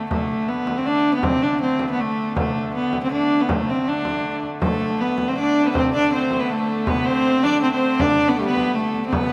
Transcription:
Already playing: hurdy-gurdy A3
0.10 hurdy-gurdy D3 A3, viola da gamba A3, frame drum
0.30 frame drum
0.48 viola da gamba B3
0.67 frame drum
0.77 viola da gamba C4
0.86 viola da gamba D4, frame drum
1.15 viola da gamba B3
1.23 viola da gamba C4, frame drum
1.43 viola da gamba D4
1.61 viola da gamba C4
1.79 frame drum
1.91 viola da gamba B3
1.99 viola da gamba A3, frame drum
2.36 viola da gamba A3, frame drum
2.56 frame drum
2.75 viola da gamba B3
2.93 frame drum
3.03 viola da gamba C4
3.12 viola da gamba D4, frame drum
3.41 viola da gamba B3
3.49 viola da gamba A3, frame drum
3.67 viola da gamba C4, frame drum
3.87 viola da gamba D4, frame drum
4.05 frame drum
4.43 frame drum
4.62 hurdy-gurdy D3 A3, viola da gamba A3, fiddle A4, frame drum
4.80 frame drum
5.00 viola da gamba B3, fiddle B4
5.18 frame drum
5.28 viola da gamba C4, fiddle C5
5.37 viola da gamba D4, fiddle D5, frame drum
5.63 viola da gamba B3, fiddle B4 C5
5.73 viola da gamba C4, fiddle C5, frame drum
5.93 viola da gamba D4, fiddle D5, frame drum
6.11 viola da gamba C4, fiddle C5
6.31 frame drum
6.39 viola da gamba B3, fiddle B4
6.49 viola da gamba A3, fiddle A4, frame drum
6.87 viola da gamba B3, fiddle B4, frame drum
7.05 viola da gamba C4, fiddle C5, frame drum
7.43 viola da gamba D4, fiddle D5, frame drum
7.62 viola da gamba C4, fiddle C5, frame drum
7.71 viola da gamba C4, fiddle C5
8.00 viola da gamba D4, fiddle D5, frame drum
8.28 viola da gamba B3
8.36 viola da gamba G3 A3, fiddle A4, frame drum
8.42 viola da gamba A3
8.46 viola da gamba B3, fiddle B4
8.57 frame drum
8.75 viola da gamba A3, fiddle A4
8.94 frame drum
9.06 viola da gamba C4
9.12 hurdy-gurdy D3 A3, viola da gamba B3, fiddle B4, frame drum

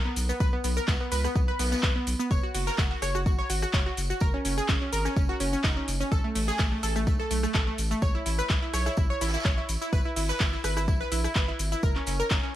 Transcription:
0.05 synth pluck B3
0.16 sub bass B1, open hi-hat, tambourine, shaker
0.29 synth pluck B3, shaker
0.40 sub bass B1, synth pluck B4, kick, tambourine, shaker
0.53 synth pluck B3
0.64 sub bass B1, synth pluck B3, open hi-hat, tambourine, shaker
0.77 synth pluck A#4, shaker
0.88 sub bass C#2, synth pluck B3, kick, snare, clap, tambourine, shaker
1.01 synth pluck B3
1.12 sub bass C#2, synth pluck B4, open hi-hat, tambourine, shaker
1.24 synth pluck B3, cross-stick, snare, shaker
1.35 sub bass B1, synth pluck B3, kick, tambourine, shaker
1.48 synth pluck B4
1.59 sub bass B1, synth pluck B3, snare, open hi-hat, tambourine, shaker
1.66 snare, tambourine
1.72 synth pluck B3, snare, tambourine, shaker
1.77 snare, tambourine
1.83 sub bass B1, synth pluck B4, kick, snare, clap, tambourine, shaker
1.96 synth pluck B3
2.07 sub bass B1, open hi-hat, tambourine, shaker
2.20 synth pluck B3, shaker
2.31 sub bass F#1, synth pluck C#5, kick, tambourine, shaker
2.43 synth pluck F#4
2.54 sub bass F#1, synth pluck F#4, open hi-hat, shaker
2.67 synth pluck A#4, snare, shaker
2.78 sub bass F#1, synth pluck F#4, kick, snare, clap, tambourine, shaker
2.91 synth pluck F#4
3.02 sub bass F#1, synth pluck C#5, cross-stick, open hi-hat, tambourine, shaker
3.15 synth pluck F#4, cross-stick, shaker
3.26 sub bass G#1, synth pluck F#4, kick, tambourine, shaker
3.39 synth pluck C#5, snare
3.50 sub bass G#1, synth pluck F#4, open hi-hat, tambourine, shaker
3.62 synth pluck F#4, cross-stick, shaker
3.73 sub bass F#1, synth pluck C#5, kick, snare, clap, tambourine, shaker
3.86 synth pluck F#4
3.97 sub bass F#1, open hi-hat, tambourine, shaker
4.10 synth pluck F#4, shaker
4.20 sub bass F#1, synth pluck A#4, kick, tambourine, shaker
4.34 synth pluck C#4
4.45 sub bass F#1, synth pluck C#4, open hi-hat, tambourine, shaker
4.58 synth pluck G#4, shaker
4.68 sub bass G#1, synth pluck C#4, kick, snare, clap, tambourine, shaker
4.82 synth pluck C#4
4.93 sub bass G#1, synth pluck A#4, open hi-hat, tambourine, shaker
5.05 synth pluck C#4, cross-stick, snare, shaker
5.16 sub bass F#1, synth pluck C#4, kick, tambourine, shaker
5.29 synth pluck F#4
5.40 sub bass F#1, synth pluck C#4, open hi-hat, tambourine, shaker
5.53 synth pluck C#4, shaker
5.64 sub bass F#1, synth pluck D#4, kick, snare, clap, tambourine, shaker
5.77 synth pluck C#4
5.88 sub bass F#1, open hi-hat, tambourine, shaker
6.01 synth pluck C#4, shaker
6.12 sub bass A1, synth pluck A4, kick, tambourine, shaker
6.24 synth pluck A3
6.35 sub bass A1, synth pluck A3, open hi-hat, shaker
6.48 synth pluck G#4, snare, shaker
6.59 sub bass A1, synth pluck A3, kick, snare, clap, tambourine, shaker
6.72 synth pluck A3
6.83 sub bass A1, synth pluck A4, open hi-hat, tambourine, shaker
6.96 synth pluck A3, cross-stick, shaker
7.07 sub bass B1, synth pluck A3, kick, tambourine, shaker
7.19 synth pluck A4, snare
7.30 sub bass B1, synth pluck A3, open hi-hat, tambourine, shaker
7.43 synth pluck A3, cross-stick, shaker
7.54 sub bass A1, synth pluck A4, kick, snare, clap, tambourine, shaker
7.67 synth pluck A3
7.78 sub bass A1, open hi-hat, tambourine, shaker
7.91 synth pluck A3, shaker
8.02 sub bass A1, synth pluck C#5, kick, tambourine, shaker
8.15 synth pluck E4
8.26 sub bass A1, synth pluck E4, open hi-hat, tambourine, shaker
8.39 synth pluck B4, shaker
8.49 sub bass B1, synth pluck E4, kick, snare, clap, tambourine, shaker
8.62 synth pluck E4
8.74 sub bass B1, synth pluck C#5, cross-stick, snare, open hi-hat, tambourine, shaker
8.86 synth pluck E4, cross-stick, snare, shaker
8.97 sub bass A1, synth pluck E4, kick, tambourine, shaker
9.10 synth pluck C#5
9.21 sub bass A1, synth pluck E4, snare, open hi-hat, tambourine, shaker
9.28 snare, tambourine
9.34 synth pluck E4, snare, tambourine, shaker
9.40 snare, tambourine
9.45 sub bass A1, synth pluck C#5, kick, snare, clap, tambourine, shaker
9.58 synth pluck E4
9.69 sub bass A1, open hi-hat, tambourine, shaker
9.82 synth pluck E4, shaker
9.93 sub bass G#1, synth pluck B4, kick, tambourine, shaker
10.05 synth pluck E4
10.16 sub bass G#1, synth pluck E4, open hi-hat, shaker
10.29 synth pluck B4, snare, shaker
10.40 sub bass G#1, synth pluck E4, kick, snare, clap, tambourine, shaker
10.53 synth pluck E4
10.64 sub bass G#1, synth pluck B4, cross-stick, open hi-hat, tambourine, shaker
10.77 synth pluck E4, cross-stick, shaker
10.88 sub bass A#1, synth pluck E4, kick, tambourine, shaker
11.01 synth pluck B4, snare
11.12 sub bass A#1, synth pluck E4, open hi-hat, tambourine, shaker
11.24 synth pluck E4, cross-stick, shaker
11.35 sub bass G#1, synth pluck B4, kick, snare, clap, tambourine, shaker
11.48 synth pluck E4
11.59 sub bass G#1, open hi-hat, tambourine, shaker
11.72 synth pluck E4, shaker
11.83 sub bass F#1, synth pluck A#4, kick, tambourine, shaker
11.95 synth pluck C#4, clap
12.06 sub bass F#1, synth pluck C#4, open hi-hat, tambourine, shaker
12.20 synth pluck A#4, shaker
12.30 sub bass G#1, synth pluck C#4, kick, snare, clap, tambourine, shaker
12.43 synth pluck C#4

